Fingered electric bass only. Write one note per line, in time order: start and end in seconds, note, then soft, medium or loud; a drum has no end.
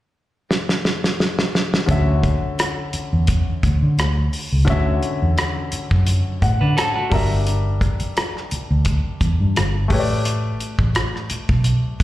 1.89 2.35 D2 medium
2.43 muted fingered electric bass stroke soft
2.94 muted fingered electric bass stroke soft
3.13 3.42 E2 medium
3.64 3.80 D2 medium
3.83 3.96 D3 medium
3.98 4.28 D2 medium
4.52 4.66 C#2 medium
4.68 4.98 D2 loud
5.22 5.36 E2 medium
5.73 muted fingered electric bass stroke soft
5.91 6.21 F#2 medium
6.42 6.58 A2 medium
6.61 6.75 D3 medium
7.12 7.88 G1 loud
8.01 muted fingered electric bass stroke soft
8.52 muted fingered electric bass stroke soft
8.71 9.00 D2 medium
9.21 9.37 E2 medium
9.40 9.54 G2 medium
9.56 9.91 G1 medium
9.91 10.50 A1 medium
10.79 10.93 A1 medium
11.31 muted fingered electric bass stroke soft
11.49 11.79 B1 medium